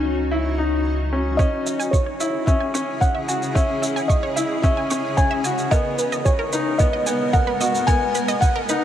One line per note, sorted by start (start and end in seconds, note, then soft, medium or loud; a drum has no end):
0.00 1.37 C#2 medium
0.00 0.23 C#4 medium
0.00 1.35 C#4 medium
0.00 1.36 D#4 medium
0.00 1.36 F#4 medium
0.00 0.81 C#5 medium
0.31 0.54 E4 medium
0.58 1.04 D#4 medium
1.13 1.35 C#4 medium
1.37 8.84 C#3 medium
1.37 1.85 C#4 medium
1.37 5.68 C#4 medium
1.37 5.68 E4 medium
1.37 5.68 G#4 medium
1.37 1.46 C#5 medium
1.37 1.94 D#5 medium
1.37 kick medium
1.37 shaker soft
1.66 1.73 E5 medium
1.66 shaker soft
1.80 1.84 G#5 loud
1.80 shaker soft
1.91 2.43 C#5 medium
1.91 1.97 C#6 medium
1.91 kick medium
1.91 shaker soft
2.06 2.11 C#5 medium
2.20 2.43 E4 medium
2.20 2.27 E5 medium
2.20 shaker medium
2.46 2.71 C#4 medium
2.46 2.97 E5 medium
2.46 kick loud
2.46 shaker soft
2.60 2.65 G#5 medium
2.74 3.20 C#4 medium
2.74 2.84 C#6 medium
2.74 shaker medium
3.01 3.06 C#5 medium
3.01 3.57 F#5 medium
3.01 kick medium
3.01 shaker soft
3.15 3.19 E5 medium
3.28 3.51 F#4 medium
3.28 3.35 G#5 medium
3.28 shaker medium
3.42 shaker soft
3.55 4.01 C#4 medium
3.55 3.62 C#5 medium
3.55 4.11 E5 medium
3.55 kick loud
3.55 shaker soft
3.82 3.89 E5 medium
3.82 shaker medium
3.96 4.00 G#5 medium
3.96 shaker soft
4.08 4.65 D#5 medium
4.08 4.14 C#6 medium
4.08 kick loud
4.08 shaker soft
4.23 4.27 C#5 loud
4.36 4.59 E4 medium
4.36 4.43 E5 medium
4.36 shaker medium
4.62 4.87 C#4 medium
4.62 5.19 E5 medium
4.62 kick loud
4.62 shaker soft
4.77 4.81 G#5 medium
4.90 5.37 C#4 medium
4.90 5.01 C#6 medium
4.90 shaker medium
5.17 5.22 C#5 medium
5.17 5.73 G#5 medium
5.17 kick loud
5.17 shaker soft
5.31 5.35 E5 loud
5.44 5.68 F#4 medium
5.44 5.51 G#5 medium
5.44 shaker medium
5.58 shaker soft
5.71 8.84 G#3 medium
5.71 6.17 B3 medium
5.71 8.84 B3 medium
5.71 5.78 A#4 loud
5.71 8.84 A#4 medium
5.71 6.27 D#5 medium
5.71 kick loud
5.71 shaker soft
5.99 6.06 B4 medium
5.99 shaker medium
6.12 6.16 D#5 medium
6.12 shaker soft
6.25 6.81 C#5 medium
6.25 6.30 G#5 medium
6.25 kick loud
6.25 shaker soft
6.39 6.43 A#4 loud
6.53 6.76 D#4 medium
6.53 6.60 B4 medium
6.53 shaker medium
6.78 7.03 B3 medium
6.78 7.35 D#5 medium
6.78 kick loud
6.78 shaker soft
6.93 6.97 D#5 medium
7.06 7.53 B3 medium
7.06 7.17 G#5 medium
7.06 shaker medium
7.33 7.38 A#4 medium
7.33 7.89 F#5 loud
7.33 kick loud
7.33 shaker soft
7.47 7.51 B4 loud
7.61 7.84 F#4 medium
7.61 7.68 D#5 medium
7.61 shaker medium
7.75 shaker soft
7.87 8.34 B3 medium
7.87 7.95 A#4 medium
7.87 8.43 G#5 loud
7.87 kick loud
7.87 shaker soft
8.15 8.22 B4 medium
8.15 shaker medium
8.28 8.33 D#5 loud
8.28 shaker soft
8.40 8.84 F#5 medium
8.40 8.46 G#5 medium
8.40 kick loud
8.40 shaker soft
8.56 8.60 A#4 medium
8.69 8.84 D#4 medium
8.69 8.76 B4 medium
8.69 shaker medium